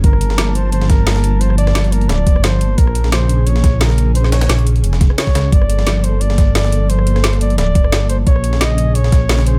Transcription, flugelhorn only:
X:1
M:4/4
L:1/8
Q:"Swing 16ths" 1/4=175
K:Bb
V:1 name="Flugelhorn"
B3 c c B3 | c d2 B d2 c2 | B2 c2 _d2 B2 | c _d2 z3 d2 |
d3 c d2 d2 | c3 d d3 c | _d2 e2 d3 c |]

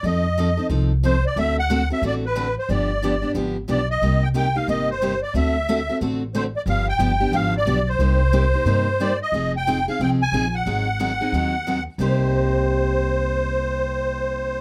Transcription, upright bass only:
X:1
M:4/4
L:1/8
Q:"Swing" 1/4=181
K:Cm
V:1 name="Upright bass" clef=bass
F,,4 C,,4 | D,,4 =A,,,4 | G,,,4 A,,,2 =B,,,2 | C,,4 G,,,4 |
D,,4 =A,,,4 | G,,,2 G,,,2 A,,,2 =B,,,2 | C,,4 G,,4 | F,,,4 C,,2 B,,,2 |
A,,,4 E,,4 | C,,8- | C,,8 |]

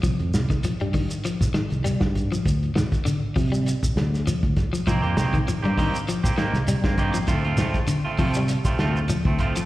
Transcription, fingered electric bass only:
X:1
M:4/4
L:1/16
Q:"Swing 16ths" 1/4=99
K:Cdor
V:1 name="Fingered electric bass" clef=bass
C,, F,, C,,2 z G,,2 z4 C,,2 G,,3 | D,,2 z4 C,3 z D,,3 D,, z2 | C,, F,, C,,2 z G,,2 z4 C,,2 G,,3 | D,,2 z4 C,3 z D,,3 D,, z2 |]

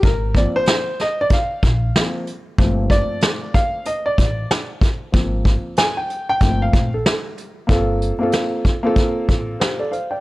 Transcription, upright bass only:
X:1
M:4/4
L:1/16
Q:"Swing 16ths" 1/4=94
K:Gm
V:1 name="Upright bass" clef=bass
_A,,,3 z6 z B,,,2 z4 | G,,,3 z6 z A,,,2 z4 | _A,,,3 z4 z G,,,2 B,,,2 z4 | G,,,3 z6 z A,,,2 z4 |]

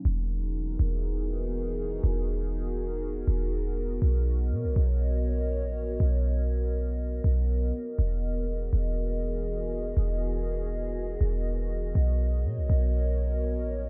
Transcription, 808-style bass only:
X:1
M:4/4
L:1/16
Q:1/4=121
K:Elyd
V:1 name="808-style bass" clef=bass
E,,,6 E,,,8- E,,,2 | E,,,8- E,,,2 E,,,6 | B,,,4 B,, B,,, B,,,6- B,,, A,,,3 | B,,,8- B,,,2 B,,,4 z2 |
E,,,6 E,,,8- E,,,2 | E,,,8- E,,,2 E,,,6 | B,,,4 B,, B,,, B,,,6- B,,, A,,,3 |]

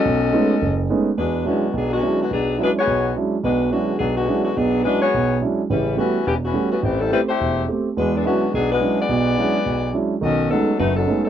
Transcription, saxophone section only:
X:1
M:4/4
L:1/8
Q:"Swing" 1/4=212
K:Bmix
V:1 name="Saxophone section"
[CFAd]6 z2 | [K:Emix] [G,DFB]2 [D,G,B,F]2 [F,B,DG] [D,G,B,F]2 [D,G,B,F] | [F,B,DG]2 [G,DFB] [B,FGc]3 z2 | [G,DFB]2 [D,G,B,F]2 [F,B,DG] [D,G,B,F]2 [D,G,B,F] |
[F,B,DG]2 [G,DFB] [B,FGc]3 z2 | [=G,CEB]2 [E,B,CF]2 [E,B,C=G] [E,B,CF]2 [E,B,CF] | [E,A,=C=G] [=G,CEA] [G,CEB] [A,EG=c]3 z2 | [G,DFB] [F,B,DG] [D,G,B,F]2 [F,B,DG] [G,DFB]2 [B,FGd]- |
[B,FGd]6 z2 | [CFA^d]2 [F,C^DA]2 [A,DFB] [F,CDA]2 [F,CDA] |]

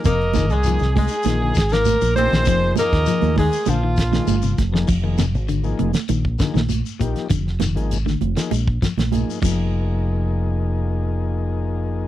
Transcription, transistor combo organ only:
X:1
M:4/4
L:1/16
Q:1/4=99
K:Fdor
V:1 name="Transistor combo organ"
z2 [F,B,EA] z [F,B,EA] z2 [EA] [F,B,EA]2 z4 [F,B,EA]2 | [F,B,EA]6 z4 z [F,B,EA] z3 [F,B,EA] | z [F,B,EA] z3 [F,B,EA]2 z3 [F,B,EA] z3 [F,B,EG]2 | z3 [F,B,EA] z3 [F,B,EA] z4 [F,B,EA]2 [F,B,EA]2- |
[F,B,EA]16 |]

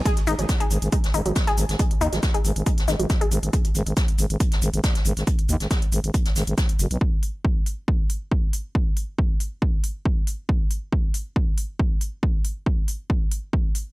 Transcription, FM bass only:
X:1
M:4/4
L:1/16
Q:1/4=138
K:G#m
V:1 name="FM bass" clef=bass
z2 G,,, G,,, z2 G,,, G,,, z2 G,,, G,,, z2 G,,, G,,, | z2 D,, G,,, z2 G,,, G,,, z2 G,,, G,,, z2 G,,, G,,, | z2 G,,, G,,, z2 G,,, G,,, z2 G,,, G,,, z2 G,,, G,,, | z2 D,, G,,, z2 G,,, G,,, z2 G,,, G,,, z2 F,,, B,,, |
z16 | z16 | z16 | z16 |]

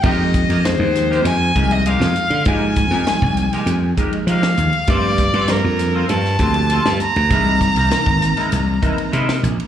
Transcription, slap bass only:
X:1
M:4/4
L:1/16
Q:1/4=99
K:Fdor
V:1 name="Slap bass" clef=bass
F,,3 F,,2 E,,3 F,,2 C,,3 F,, z D, | A,,3 F,, z C,,2 z F,,2 z2 F,2 E,, z | G,,3 G,,2 F,,3 G,,2 D,,3 G,, z D,, | C,,3 C,, z ^G,,,2 z C,,2 z2 C,2 B,,, z |]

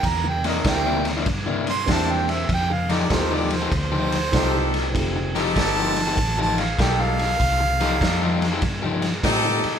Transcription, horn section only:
X:1
M:4/4
L:1/8
Q:"Swing" 1/4=98
K:F
V:1 name="Horn section"
z [DEB]2 z3 [DEc]2 | z [_EGA]2 z3 [EGA]2 | z [_EGA]2 z3 [EGA]2 | z [_EGA]2 z3 [EGA]2 |]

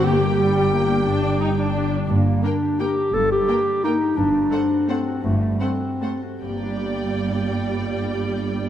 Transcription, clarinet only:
X:1
M:3/4
L:1/8
Q:1/4=168
K:Gm
V:1 name="Clarinet"
G6- | G4- G z | B,2 D2 G2 | A G3 E2 |
D4 C2 | A,2 C3 z | B,6- | B,6 |]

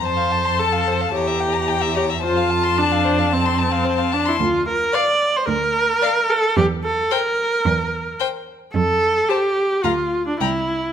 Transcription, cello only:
X:1
M:4/4
L:1/8
Q:1/4=110
K:F
V:1 name="Cello" clef=bass
F,,4 E,,4 | F,,8 | D,,2 z2 D,,2 z2 | E,,2 z2 E,,2 z2 |
F,,2 z2 D,,2 C,,2 |]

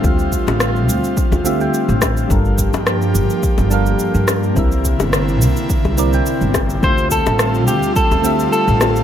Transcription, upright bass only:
X:1
M:4/4
L:1/16
Q:"Swing 16ths" 1/4=106
K:Dm
V:1 name="Upright bass" clef=bass
D,,2 z A,,,3 D,, z2 D,,2 z2 A,,,2 z | G,,,2 z G,,3 G,,, z2 G,,,2 z2 G,,2 z | C,,2 z G,,,3 C,, z2 C,,2 z2 G,,,2 z | D,,2 z A,,,3 D,, z2 D,,2 z2 A,,,2 z |]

